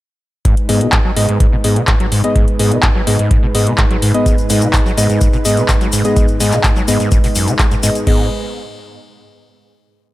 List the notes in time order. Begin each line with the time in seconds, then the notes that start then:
0.45 G#2 G#3 D#4 B4, kick, closed hi-hat
0.57 closed hi-hat
0.69 G#2 B3 G#4 D#5, open hi-hat
0.81 B2, closed hi-hat
0.92 G#2, kick, clap, closed hi-hat
1.05 F#3
1.16 G#2 B3 G#4 D#5, open hi-hat
1.29 G#2
1.40 G#2, kick, closed hi-hat
1.53 B2
1.64 G#2 B3 G#4 D#5, open hi-hat
1.76 B2, closed hi-hat
1.87 G#2, kick, clap, closed hi-hat
2.00 F#3, closed hi-hat
2.12 G#2, open hi-hat
2.24 B3 G#4 D#5, closed hi-hat
2.36 G#2, kick, closed hi-hat
2.48 closed hi-hat
2.59 G#2 B3 G#4 D#5, open hi-hat
2.72 B2, closed hi-hat
2.83 G#2, kick, clap, closed hi-hat
2.95 F#3
3.07 G#2 B3 G#4 D#5, open hi-hat
3.19 G#2, closed hi-hat
3.31 kick, closed hi-hat
3.43 B2
3.55 G#2 B3 G#4 D#5, open hi-hat
3.67 B2, closed hi-hat
3.78 G#2, kick, clap, closed hi-hat
3.91 F#3, closed hi-hat
4.02 G#2, open hi-hat
4.14 B3 G#4 D#5, closed hi-hat
4.26 G#2, kick, closed hi-hat, shaker
4.38 closed hi-hat, shaker
4.50 G#2 B3 G#4 D#5, open hi-hat, shaker
4.61 B2, closed hi-hat, shaker
4.73 G#2, kick, clap, closed hi-hat, shaker
4.86 F#3, shaker
4.97 G#2 B3 G#4 D#5, open hi-hat, shaker
5.09 G#2, closed hi-hat, shaker
5.21 kick, closed hi-hat, shaker
5.33 B2, shaker
5.45 G#2 B3 G#4 D#5, open hi-hat, shaker
5.57 B2, closed hi-hat, shaker
5.68 G#2, kick, clap, closed hi-hat, shaker
5.81 F#3, closed hi-hat, shaker
5.92 G#2, open hi-hat, shaker
6.04 B3 G#4 D#5, closed hi-hat, shaker
6.16 G#2, kick, closed hi-hat, shaker
6.28 closed hi-hat, shaker
6.40 G#2 B3 G#4 D#5, open hi-hat, shaker
6.52 B2, clap, closed hi-hat, shaker
6.64 G#2, kick, clap, closed hi-hat, shaker
6.76 F#3, shaker
6.88 G#2 B3 G#4 D#5, open hi-hat, shaker
7.00 G#2, closed hi-hat, shaker
7.11 G#2, kick, closed hi-hat, shaker
7.24 B2, open hi-hat, shaker
7.35 F#2, open hi-hat, shaker
7.48 C#3, closed hi-hat, shaker
7.59 G#3, kick, clap, closed hi-hat, shaker
7.71 G#2, closed hi-hat, shaker
7.83 G#2 B3 G#4 D#5, open hi-hat, shaker
7.95 closed hi-hat, shaker
8.07 G#2 G#3 B3 G#4 B4 D#5, kick, crash